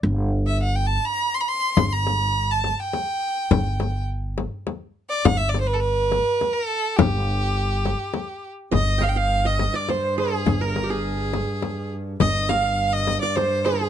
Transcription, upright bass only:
\new Staff \with { instrumentName = "Upright bass" } { \clef bass \time 3/4 \tempo 4 = 104 g,,2 r4 | g,,2 r4 | g,,2 r4 | g,,2 r4 |
g,,2 r4 | g,,2 r4 | g,,2 r4 | g,,2 r4 | }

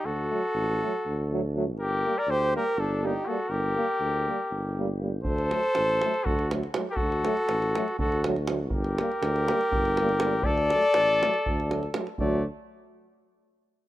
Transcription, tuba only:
\new Staff \with { instrumentName = "Tuba" } { \clef bass \time 7/8 \tempo 4 = 121 d,4 a,,4 d,4. | g,,4 d,4 g,,4. | g,,4 d,4 g,,4. | d,4 a,,4 d,4. |
d,4 a,,4 d,4. | g,,4 d,4 g,,4. | d,4 a,,4 d,4. | d,8 r2. | }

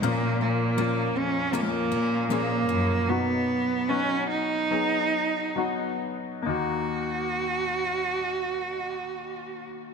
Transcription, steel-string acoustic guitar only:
\new Staff \with { instrumentName = "Steel-string acoustic guitar" } { \time 4/4 \key ees \minor \tempo 4 = 72 <bes, f'>4 bes4 <bes des' f'>8 des'8 <bes des' f'>8 bes8 | r1 | r1 | }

